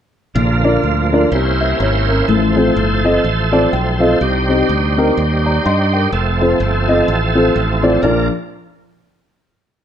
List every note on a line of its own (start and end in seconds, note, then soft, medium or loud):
0.35 0.76 A#1 loud
0.35 1.07 A#2 medium
0.35 1.30 D3 medium
0.35 1.30 F3 soft
0.35 2.26 A#3 soft
0.35 1.30 F4 medium
0.64 0.78 D4 medium
0.64 0.78 F4 medium
0.64 0.78 A#4 medium
0.64 0.78 D5 medium
0.83 1.24 D2 medium
1.12 1.26 D4 medium
1.12 1.26 F4 medium
1.12 1.26 A#4 medium
1.12 1.27 D5 medium
1.31 1.73 C2 medium
1.31 2.04 C3 medium
1.31 2.27 C#4 medium
1.31 2.27 E4 medium
1.31 6.08 C5 medium
1.61 1.80 G4 soft
1.61 1.80 E5 medium
1.80 2.21 G#1 medium
1.80 2.07 E4 medium
1.80 2.07 C#5 medium
2.09 2.54 C#4 medium
2.09 2.54 A#4 medium
2.28 2.69 A1 medium
2.28 3.00 A2 medium
2.28 4.19 F3 medium
2.28 4.19 A3 soft
2.28 4.19 A4 medium
2.56 2.70 C4 medium
2.56 2.71 F4 medium
2.56 2.71 A4 medium
2.56 2.71 C5 medium
2.76 3.17 G1 medium
3.04 3.18 C4 medium
3.04 3.19 F4 medium
3.04 3.19 A4 medium
3.04 3.19 D#5 medium
3.24 3.65 A1 medium
3.52 3.66 C4 medium
3.52 3.66 F4 medium
3.52 3.67 A4 medium
3.52 3.67 D5 medium
3.52 3.71 A5 medium
3.73 4.14 B1 medium
3.73 3.98 G5 medium
4.00 4.14 C4 medium
4.00 4.14 F4 medium
4.00 4.15 A4 medium
4.00 4.15 D#5 medium
4.00 4.19 F5 medium
4.21 4.62 C2 medium
4.21 4.92 C3 medium
4.21 6.11 G3 medium
4.21 6.11 D#4 medium
4.21 6.11 G4 medium
4.49 4.63 C4 medium
4.49 4.63 D#4 medium
4.49 4.63 G4 medium
4.49 4.63 C5 medium
4.69 5.10 D2 medium
4.97 5.11 C4 medium
4.97 5.11 D#4 medium
4.97 5.11 G4 medium
4.97 5.12 A#4 medium
5.17 5.58 D#2 medium
5.46 5.65 D5 medium
5.46 5.64 A#5 medium
5.66 6.06 G2 medium
5.66 5.92 D#5 medium
5.66 5.91 C6 medium
5.93 6.39 A#4 soft
5.93 6.38 G5 medium
6.12 6.53 F1 medium
6.12 8.01 F3 medium
6.12 8.02 A3 soft
6.12 8.02 C4 medium
6.12 8.02 A4 medium
6.41 6.55 C4 medium
6.41 6.55 F4 medium
6.41 6.55 A4 medium
6.41 6.55 C5 medium
6.60 7.01 G1 medium
6.88 7.02 C4 medium
6.88 7.02 F4 medium
6.88 7.02 A4 medium
6.88 7.03 D#5 medium
7.08 7.49 A1 medium
7.35 7.50 C4 medium
7.35 7.50 F4 medium
7.35 7.50 A4 medium
7.35 7.50 C5 medium
7.56 7.96 A1 medium
7.82 7.97 C4 medium
7.82 7.97 F4 medium
7.82 7.97 A4 medium
7.82 7.97 D5 medium
8.02 8.28 A#1 medium
8.02 8.29 A#1 medium
8.02 8.28 F3 medium
8.02 8.28 A#3 soft
8.02 8.28 D4 soft
8.02 8.29 D4 medium
8.02 8.29 F4 medium
8.02 8.28 A#4 medium
8.02 8.29 A#4 medium
8.02 8.29 D5 medium